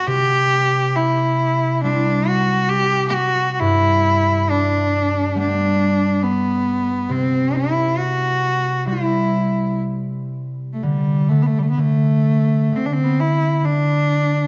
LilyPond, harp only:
\new Staff \with { instrumentName = "Harp" } { \clef bass \time 4/4 \key c \lydian \tempo 4 = 68 c2 <g c' e'>2 | g,2 <g a b>2 | c2 <g c' e'>2 | d8 d8 d4 d4 d4 | }